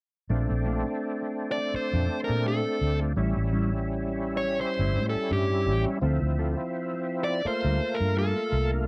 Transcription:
0.29 A#1 A#2 A3 C4 D4 F4
0.50 A#1, muted clean electric guitar stroke
0.65 A#2 A3 D4 F4
0.85 muted clean electric guitar stroke
1.21 muted clean electric guitar stroke
1.52 D5
1.57 muted clean electric guitar stroke
1.73 C5, muted clean electric guitar stroke, muted fingered electric bass stroke
1.93 F2 A#2 A3 D4 F4
2.09 muted clean electric guitar stroke
2.24 A#4
2.29 A#2
2.45 A#2 A3 D4 F4 A4
2.65 muted clean electric guitar stroke
2.80 D2, muted clean electric guitar stroke
3.00 A3 D4 F4
3.16 A1 A2 G3 C#4 E4
3.36 A1, muted clean electric guitar stroke
3.52 A2 G3 C#4 E4
3.72 muted clean electric guitar stroke
4.08 muted clean electric guitar stroke
4.37 C#5
4.43 muted clean electric guitar stroke
4.59 C5, muted clean electric guitar stroke
4.79 G1 A2 G3 C#4 E4
4.95 A2
5.09 A4
5.15 muted fingered electric bass stroke
5.30 G2 A2 G3 C#4 E4 G4
5.50 muted clean electric guitar stroke
5.66 A1, muted clean electric guitar stroke
5.86 G3 C#4 E4, muted fingered electric bass stroke
6.01 D2 D3 F3 C4 E4 F4 A4
6.22 D2, muted clean electric guitar stroke
6.38 D3 C4 F4 A4
6.58 muted clean electric guitar stroke
6.93 muted clean electric guitar stroke
7.24 D5
7.29 muted clean electric guitar stroke
7.45 A3 A#3 F4 C5, muted fingered electric bass stroke, muted clean electric guitar stroke
7.65 D2 G3 D4 F4 A#4
7.81 muted clean electric guitar stroke
7.94 A#4
8.00 G2
8.16 G3 D4 F4 A4 A#4
8.36 muted clean electric guitar stroke
8.52 C2, muted clean electric guitar stroke
8.71 D4 F4 A#4

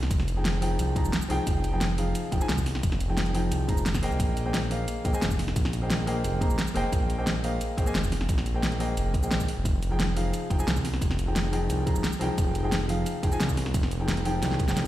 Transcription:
0.03 snare
0.11 F1, kick, closed hi-hat, cabasa
0.20 snare
0.28 closed hi-hat, cabasa
0.36 F3 D#4 G#4 G5
0.45 snare, closed hi-hat, cabasa
0.61 F3 D#4 G#4 G5, open hi-hat
0.79 C2, closed hi-hat, cabasa
0.95 F3 D#4 G#4 A#5, kick, closed hi-hat, cabasa
1.05 F1, cabasa
1.13 snare, closed hi-hat, cabasa
1.22 cabasa
1.28 C2 F3 D#4 G#4 G5, open hi-hat
1.47 F1, kick, closed hi-hat, cabasa
1.64 closed hi-hat, cabasa
1.72 F3 D#4 G#4 G5
1.81 snare, closed hi-hat, cabasa
1.98 F3 D#4 G#4 F5, open hi-hat
2.15 closed hi-hat, cabasa
2.31 F1 F3 D#4 G#4 G5, kick, closed hi-hat, cabasa
2.40 F3 D#4 G#4 G#5, cabasa
2.49 C2, snare, closed hi-hat, cabasa
2.58 kick, cabasa
2.66 snare, open hi-hat
2.75 snare
2.83 F1, kick, closed hi-hat, cabasa
2.92 snare
3.00 closed hi-hat, cabasa
3.08 F3 D#4 G#4 G5
3.17 snare, closed hi-hat, cabasa
3.26 closed hi-hat
3.34 F3 D#4 G#4 G5, open hi-hat
3.52 C2, closed hi-hat, cabasa
3.68 F1 F3 D#4 G#4 A#5, kick, closed hi-hat, cabasa
3.77 cabasa
3.86 snare, closed hi-hat, cabasa
3.94 kick, snare, closed hi-hat, cabasa
4.01 A#3 G#4 C5 D#5 G5, open hi-hat
4.12 C2, cabasa
4.20 A#1, kick, closed hi-hat, cabasa
4.37 closed hi-hat, cabasa
4.45 A#3 G#4 C5 D#5 G5
4.54 snare, closed hi-hat, cabasa
4.70 A#3 G#4 C5 D#5 F5, open hi-hat
4.88 closed hi-hat, cabasa
5.04 A#1 A#3 G#4 C5 D#5 G5, kick, closed hi-hat, cabasa
5.13 A#3 G#4 C5 D#5 G#5, cabasa
5.22 F1, snare, closed hi-hat, cabasa
5.31 kick, cabasa
5.39 snare, open hi-hat
5.48 snare
5.56 A#1, kick, closed hi-hat, cabasa
5.65 snare
5.73 closed hi-hat, cabasa
5.81 A#3 G#4 C5 D#5 G5
5.90 snare, closed hi-hat, cabasa
6.07 A#3 G#4 C5 D#5 G5, open hi-hat
6.24 F1, closed hi-hat, cabasa
6.41 A#3 G#4 C5 D#5 A#5, kick, closed hi-hat, cabasa
6.50 A#1, cabasa
6.59 snare, closed hi-hat, cabasa
6.67 cabasa
6.74 F1 A#3 G#4 C5 D#5 G5, open hi-hat
6.92 A#1, kick, closed hi-hat, cabasa
7.10 closed hi-hat, cabasa
7.18 A#3 G#4 C5 D#5 G5
7.27 snare, closed hi-hat, cabasa
7.43 A#3 G#4 C5 D#5 F5, open hi-hat
7.61 closed hi-hat, cabasa
7.77 A#1 A#3 G#4 C5 D#5 G5, kick, closed hi-hat, cabasa
7.86 A#3 G#4 C5 D#5 G#5, cabasa
7.95 F1, snare, closed hi-hat, cabasa
8.04 kick, cabasa
8.12 snare, open hi-hat
8.21 snare
8.29 A#1, kick, closed hi-hat, cabasa
8.38 snare
8.46 closed hi-hat, cabasa
8.54 A#3 G#4 C5 D#5 G5
8.63 snare, closed hi-hat, cabasa
8.72 closed hi-hat
8.79 A#3 G#4 C5 D#5 G5, open hi-hat
8.97 F1, closed hi-hat, cabasa
9.14 A#1, kick, closed hi-hat, cabasa
9.22 A#3 G#4 C5 D#5 G5, cabasa
9.31 snare, closed hi-hat, cabasa
9.40 kick, cabasa
9.48 open hi-hat
9.57 F1
9.65 F1, kick, closed hi-hat, cabasa
9.83 closed hi-hat, cabasa
9.90 F3 D#4 G#4 G5
10.00 snare, closed hi-hat, cabasa
10.16 F3 D#4 G#4 F5, open hi-hat
10.34 closed hi-hat, cabasa
10.50 F1 F3 D#4 G#4 G5, kick, closed hi-hat, cabasa
10.59 F3 D#4 G#4 G#5, cabasa
10.67 C2, snare, closed hi-hat, cabasa
10.76 kick, cabasa
10.85 snare, open hi-hat
10.94 snare
11.01 F1, kick, closed hi-hat, cabasa
11.11 snare
11.19 closed hi-hat, cabasa
11.27 F3 D#4 G#4 G5
11.36 snare, closed hi-hat, cabasa
11.52 F3 D#4 G#4 G5, open hi-hat
11.70 C2, closed hi-hat, cabasa
11.86 F3 D#4 G#4 A#5, kick, closed hi-hat, cabasa
11.96 F1, cabasa
12.04 snare, closed hi-hat, cabasa
12.13 cabasa
12.19 C2 F3 D#4 G#4 G5, open hi-hat
12.38 F1, kick, closed hi-hat, cabasa
12.55 closed hi-hat, cabasa
12.63 F3 D#4 G#4 G5
12.72 snare, closed hi-hat, cabasa
12.88 F3 D#4 G#4 F5, open hi-hat
13.06 closed hi-hat, cabasa
13.22 F1 F3 D#4 G#4 G5, kick, closed hi-hat, cabasa
13.31 F3 D#4 G#4 G#5, cabasa
13.40 C2, snare, closed hi-hat, cabasa
13.49 kick, cabasa
13.57 snare, open hi-hat
13.66 snare
13.74 F1, kick, closed hi-hat, cabasa
13.83 snare
13.91 closed hi-hat, cabasa
13.99 F3 D#4 G#4 G5
14.08 snare, closed hi-hat, cabasa
14.17 closed hi-hat
14.25 F3 D#4 G#4 G5, open hi-hat
14.42 C2, snare, closed hi-hat, cabasa
14.51 snare
14.59 kick, closed hi-hat, cabasa
14.67 F1 F3 D#4 G#4 G5, snare, cabasa
14.76 C2, snare, closed hi-hat, cabasa

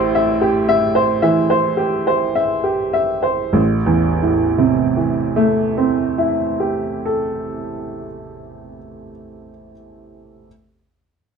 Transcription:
Already playing: A1 A2 G4 C5 E5
0.15 E5
0.41 G4
0.69 E5
0.95 C5
1.22 E3 E5
1.50 C5
1.77 G4
2.07 C5
2.35 E5
2.64 G4
2.93 E5
3.23 C5
3.53 A1
3.86 E2
4.22 A2
4.58 C3
4.97 E3
5.36 A3
5.78 C4
6.18 E4
6.60 G4
7.05 A4

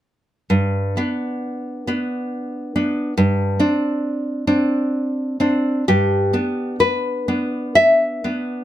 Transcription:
0.50 G2
0.97 B3 D4
1.87 B3 D4
2.76 B3 D4
3.18 G2
3.60 C4 D4
4.47 C4 D4
5.40 C4 D4
5.88 G2 G4
6.33 B3 D4
6.80 B4
7.28 B3 D4
7.75 E5
8.24 B3 D4

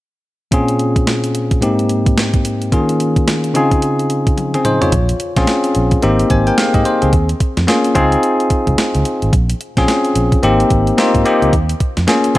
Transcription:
0.51 A#2 C4 C#4 F4 G#4, kick, closed hi-hat
0.68 closed hi-hat
0.79 closed hi-hat
0.96 kick, closed hi-hat
1.07 snare, closed hi-hat
1.24 closed hi-hat
1.35 closed hi-hat
1.51 kick, closed hi-hat
1.61 G#2 A#3 C4 D#4 G4, closed hi-hat
1.79 closed hi-hat
1.89 closed hi-hat
2.06 kick, closed hi-hat
2.18 snare, closed hi-hat
2.34 kick, closed hi-hat
2.45 closed hi-hat
2.62 closed hi-hat
2.72 D#3 A#3 C#4 F4 G#4, kick, closed hi-hat
2.89 closed hi-hat
3.00 closed hi-hat
3.16 kick, closed hi-hat
3.28 snare, closed hi-hat
3.44 closed hi-hat
3.54 C#3 C4 D#4 F4 G#4, closed hi-hat
3.71 kick, closed hi-hat
3.82 closed hi-hat
3.99 closed hi-hat
4.10 closed hi-hat
4.27 kick, closed hi-hat
4.38 closed hi-hat, high tom
4.54 C4 G#4, closed hi-hat, mid tom
4.65 D#4 C5, closed hi-hat, mid tom
4.81 F4 C#5, closed hi-hat, floor tom
4.92 A#1, kick, closed hi-hat
5.09 closed hi-hat
5.20 closed hi-hat
5.36 A#1 C4 C#4 F4 G#4, kick, snare, closed hi-hat
5.47 snare, closed hi-hat
5.64 closed hi-hat
5.75 A#1, closed hi-hat
5.91 kick, closed hi-hat
6.02 G#1 A#3 C4 D#4 G4, closed hi-hat
6.19 closed hi-hat
6.30 G#1 C5 G#5, kick, closed hi-hat
6.47 A#4 G5, closed hi-hat
6.58 G#4 F5, snare, closed hi-hat
6.74 G#2 G4 D#5, kick, closed hi-hat
6.85 D#4 C5, closed hi-hat
7.02 C#2 C4 G#4, closed hi-hat
7.13 D#2, kick, closed hi-hat
7.29 closed hi-hat
7.40 kick, closed hi-hat
7.57 F2, snare, closed hi-hat
7.67 A#3 C#4 F4 G#4, snare, closed hi-hat
7.84 closed hi-hat
7.95 C#2 C4 D#4 F4 G#4, kick, closed hi-hat
8.12 closed hi-hat
8.23 closed hi-hat
8.40 closed hi-hat
8.50 muted fingered electric bass stroke, kick, closed hi-hat
8.67 C2, kick, closed hi-hat
8.78 snare, closed hi-hat
8.95 C#2, closed hi-hat
9.05 closed hi-hat
9.22 G#1, closed hi-hat
9.33 A#1, kick, closed hi-hat
9.50 closed hi-hat
9.61 closed hi-hat
9.77 A#1 C4 C#4 F4 G#4, kick, snare, closed hi-hat
9.88 snare, closed hi-hat
10.05 closed hi-hat
10.15 A#1, closed hi-hat
10.32 kick, closed hi-hat
10.43 G#1 A#3 C4 D#4 G4, closed hi-hat
10.60 closed hi-hat
10.70 G#1, kick, closed hi-hat
10.87 closed hi-hat
10.98 A#3 C4 D#4 F4, snare, closed hi-hat
11.15 G#2, kick, closed hi-hat
11.25 A#3 C4 D#4 G4, closed hi-hat
11.42 C#2, closed hi-hat
11.53 D#2, kick, closed hi-hat
11.69 closed hi-hat
11.80 kick, closed hi-hat
11.97 F2, snare, closed hi-hat
12.07 A#3 C#4 F4 G#4, snare, closed hi-hat
12.24 closed hi-hat
12.35 C4, closed hi-hat

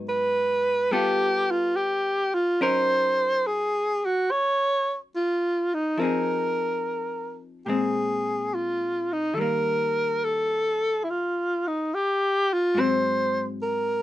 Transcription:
Already playing: G#2 F#3 B3 D#4
0.09 B4
0.91 G3 B3 F4 G4 A4
1.51 F4
1.76 G4
2.35 F4
2.61 F#3 C#4 D#4 A#4 C5
3.47 G#4
4.06 F#4
4.31 C#5
5.16 F4
5.74 D#4
5.97 F3 C4 A#4
6.02 D#4 G#4
7.65 A#2 G#3 G4 G#4
7.70 C4
8.55 F4
9.13 D#4
9.34 D#3 G3 A4
9.40 A#3 A#4
10.24 A4
11.04 E4
11.10 F4
11.67 D#4
11.94 G4
12.53 F4
12.75 G#2 F#3 C4
12.80 C5
13.63 A#4

